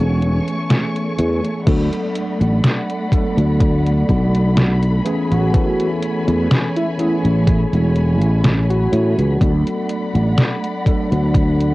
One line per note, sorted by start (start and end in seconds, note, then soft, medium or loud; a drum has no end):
0.00 0.38 E1 loud
0.00 1.61 E3 medium
0.00 1.61 A3 medium
0.00 11.74 A3 medium
0.00 1.61 B3 medium
0.00 1.62 C#4 medium
0.00 1.62 G#4 medium
0.00 1.63 C#5 medium
0.00 1.63 G#5 medium
0.00 1.65 C#6 medium
0.22 closed hi-hat soft
0.48 closed hi-hat soft
0.70 snare loud
0.70 closed hi-hat medium
0.96 closed hi-hat soft
1.19 1.40 E2 medium
1.19 closed hi-hat medium
1.45 closed hi-hat soft
1.65 1.88 D2 loud
1.65 3.06 F#3 medium
1.65 3.06 A3 medium
1.65 3.07 B3 medium
1.65 3.07 D4 medium
1.65 3.07 A4 medium
1.65 5.02 D5 medium
1.65 5.02 F#5 medium
1.65 9.37 B5 medium
1.65 kick loud
1.65 closed hi-hat loud
1.65 crash medium
1.93 closed hi-hat soft
2.16 closed hi-hat medium
2.41 2.59 A1 loud
2.41 closed hi-hat soft
2.64 snare loud
2.64 closed hi-hat medium
2.90 closed hi-hat soft
3.10 4.99 F#3 medium
3.10 5.00 A3 medium
3.10 5.00 B3 medium
3.10 5.00 D4 medium
3.10 5.01 A4 medium
3.10 kick loud
3.10 closed hi-hat medium
3.37 4.02 D2 medium
3.37 closed hi-hat soft
3.60 kick loud
3.60 closed hi-hat loud
3.86 closed hi-hat soft
4.09 4.99 B1 loud
4.09 kick medium
4.09 closed hi-hat soft
4.35 closed hi-hat soft
4.57 snare loud
4.57 closed hi-hat loud
4.83 closed hi-hat soft
5.04 5.48 E3 loud
5.04 5.48 A3 medium
5.04 5.48 B3 medium
5.04 5.48 C#4 medium
5.04 5.49 G#4 loud
5.04 9.37 C#5 medium
5.04 9.37 G#5 medium
5.04 closed hi-hat medium
5.31 5.50 A1 medium
5.31 5.89 F#4 loud
5.31 closed hi-hat soft
5.52 6.93 E3 medium
5.52 6.93 A3 medium
5.52 6.93 B3 medium
5.52 6.94 C#4 medium
5.52 6.94 A4 medium
5.52 kick loud
5.52 closed hi-hat medium
5.80 closed hi-hat soft
6.02 closed hi-hat medium
6.28 6.46 E2 loud
6.28 closed hi-hat soft
6.51 snare loud
6.51 closed hi-hat medium
6.76 6.91 E4 medium
6.76 closed hi-hat soft
6.97 9.35 E3 medium
6.97 9.35 A3 medium
6.97 9.35 B3 medium
6.97 9.36 C#4 medium
6.97 7.15 E4 medium
6.97 9.36 G#4 loud
6.97 closed hi-hat medium
7.24 7.64 A1 medium
7.24 closed hi-hat soft
7.47 kick loud
7.47 closed hi-hat loud
7.73 8.22 E1 loud
7.73 closed hi-hat soft
7.96 closed hi-hat soft
8.22 8.86 A1 medium
8.22 closed hi-hat soft
8.44 snare loud
8.44 closed hi-hat loud
8.69 9.51 F#4 loud
8.69 closed hi-hat soft
8.92 9.13 A2 medium
8.92 closed hi-hat medium
9.18 9.37 C#2 medium
9.18 closed hi-hat soft
9.39 9.62 D2 loud
9.39 10.80 F#3 medium
9.39 10.80 A3 medium
9.39 10.81 B3 medium
9.39 10.81 D4 medium
9.39 10.81 A4 medium
9.39 11.74 D5 medium
9.39 11.74 F#5 medium
9.39 11.74 B5 medium
9.39 kick loud
9.39 closed hi-hat loud
9.67 closed hi-hat soft
9.89 closed hi-hat medium
10.15 10.33 A1 loud
10.15 closed hi-hat soft
10.38 snare loud
10.38 closed hi-hat loud
10.64 closed hi-hat soft
10.85 11.74 F#3 medium
10.85 11.74 A3 medium
10.85 11.74 B3 medium
10.85 11.74 D4 medium
10.85 11.74 A4 medium
10.85 kick loud
10.85 closed hi-hat medium
11.12 11.74 D2 medium
11.12 closed hi-hat soft
11.34 kick loud
11.34 closed hi-hat loud
11.60 closed hi-hat soft